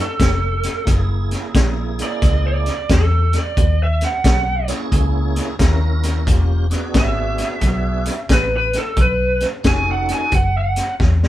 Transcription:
0.01 lead electric guitar A4
0.19 fingered electric bass F1, kick, snare, closed hi-hat
0.63 snare, closed hi-hat
0.85 fingered electric bass F#1, tonewheel organ A#3 E4 G#4, kick, snare, closed hi-hat
1.31 snare, closed hi-hat
1.54 fingered electric bass A#1, kick, snare, closed hi-hat
1.99 snare, closed hi-hat
2.03 lead electric guitar D5
2.22 fingered electric bass C#2, kick, snare, closed hi-hat
2.47 lead electric guitar D5
2.66 snare, closed hi-hat
2.89 fingered electric bass E2, lead electric guitar A4, kick, snare, closed hi-hat
3.33 snare, closed hi-hat
3.38 lead electric guitar D5
3.57 fingered electric bass D#2, kick, closed hi-hat
3.83 lead electric guitar E5
4.01 lead electric guitar F#5, snare, closed hi-hat
4.24 fingered electric bass B1, kick, snare, closed hi-hat
4.68 tonewheel organ A#3 C#4 E4 G#4, snare, closed hi-hat
4.92 fingered electric bass C#2, kick, closed hi-hat
5.36 snare, closed hi-hat
5.59 fingered electric bass D#2, tonewheel organ A#3 C#4 E4 A#4, kick, snare, closed hi-hat
6.03 snare, closed hi-hat
6.26 fingered electric bass E1, tonewheel organ A#3 C#4 F4 G4, kick, snare, closed hi-hat
6.70 tonewheel organ B3 D4 F#4 G#4, snare, closed hi-hat
6.94 fingered electric bass G#1, kick, snare, closed hi-hat
6.98 lead electric guitar E5
7.38 snare, closed hi-hat
7.61 fingered electric bass B1, kick, snare, closed hi-hat
8.05 snare, closed hi-hat
8.29 fingered electric bass A1, lead electric guitar B4, kick, snare, closed hi-hat
8.57 lead electric guitar B4
8.73 snare, closed hi-hat
8.78 lead electric guitar A4
8.96 fingered electric bass B1, kick, closed hi-hat
9.01 lead electric guitar B4
9.40 snare, closed hi-hat
9.63 fingered electric bass F1, tonewheel organ C#4 D#4 F#4 A4, kick, snare, closed hi-hat
9.68 lead electric guitar G#5
9.92 lead electric guitar F#5
10.09 snare, closed hi-hat
10.13 lead electric guitar G#5
10.32 fingered electric bass F#1, lead electric guitar F#5, kick, closed hi-hat
10.58 lead electric guitar F#5
10.76 snare, closed hi-hat
11.00 fingered electric bass E2, kick, snare
11.23 snare

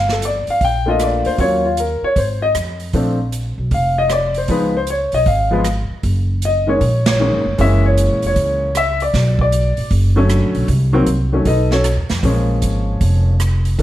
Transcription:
Already playing: upright bass G1
0.09 grand piano A4, snare
0.22 grand piano D5, closed hi-hat
0.47 grand piano F5, muted upright bass stroke, open hi-hat
0.61 upright bass A#1, grand piano G5, kick, open hi-hat
0.86 grand piano A3 A#3 D4 F4 D#5
0.99 grand piano D5, cross-stick, closed hi-hat
1.25 upright bass D2, grand piano C5, open hi-hat
1.38 upright bass D#2, grand piano F#3 A#3 C#4 F4 C#5, kick, open hi-hat
1.65 grand piano F4
1.77 grand piano A#4, closed hi-hat
2.02 grand piano C#5, muted upright bass stroke
2.16 upright bass G#1, grand piano C5, kick, open hi-hat
2.42 grand piano D#5
2.55 upright bass F2, cross-stick, closed hi-hat
2.80 open hi-hat
2.93 upright bass A#1, grand piano F3 A3 C4 D4, kick, open hi-hat
3.32 closed hi-hat
3.58 upright bass B1
3.71 upright bass F1, grand piano F5, kick, open hi-hat
3.98 grand piano D#5
4.08 grand piano C#5, cross-stick, closed hi-hat
4.12 grand piano D5
4.34 grand piano C5, open hi-hat
4.48 upright bass C#2, grand piano F3 G#3 B3 D#4 B4, kick, open hi-hat
4.77 grand piano C5
4.87 grand piano C#5, closed hi-hat
5.12 upright bass B1, grand piano D#5, open hi-hat
5.26 upright bass G#1, grand piano F5, kick, open hi-hat
5.51 grand piano F3 G#3 B3 F4 B4
5.64 cross-stick, closed hi-hat
5.90 muted upright bass stroke
6.03 upright bass F#1, kick, open hi-hat
6.42 grand piano D#5, closed hi-hat
6.67 grand piano D#3 G#3 A#3 C#4 C#5
6.81 upright bass A#1, kick, open hi-hat
7.06 grand piano C#5, snare, ride
7.19 grand piano D#3 G#3 A#3 C#4
7.33 upright bass G#1
7.46 upright bass G1
7.58 upright bass F#1, grand piano E3 G#3 A#3 C#4 E5, kick, open hi-hat
7.86 grand piano C#5
7.97 closed hi-hat
8.10 upright bass A#1
8.22 upright bass F1, open hi-hat
8.27 grand piano C#5
8.36 upright bass C#2, kick, open hi-hat
8.75 grand piano E5, cross-stick, closed hi-hat
9.00 grand piano D5, open hi-hat
9.14 upright bass B1, kick, snare, open hi-hat
9.39 grand piano D5, kick
9.52 closed hi-hat
9.77 upright bass A1, open hi-hat
9.91 upright bass F#1, kick, open hi-hat
10.16 grand piano D3 F#3 A3 C#4
10.29 cross-stick, closed hi-hat
10.43 upright bass A1
10.55 upright bass B1, open hi-hat
10.68 upright bass C2, kick, open hi-hat
10.93 grand piano D#3 F#3 A#3 C4
11.06 upright bass C2, closed hi-hat
11.32 grand piano D#3 F#3 A3 C#4
11.45 upright bass B1, grand piano D#4 A4 B4 D#5, kick, open hi-hat
11.71 grand piano C#4 F#4 A4 C#5, snare
11.84 cross-stick, closed hi-hat
11.97 upright bass D#2
12.09 upright bass F2, snare, open hi-hat
12.23 upright bass A#1, grand piano F3 G#3 A#3 C#4, kick, open hi-hat
12.62 upright bass G#1, closed hi-hat
13.01 upright bass F1, kick, open hi-hat
13.40 cross-stick, closed hi-hat
13.65 open hi-hat
13.78 upright bass C2, grand piano E3 A3, kick, open hi-hat

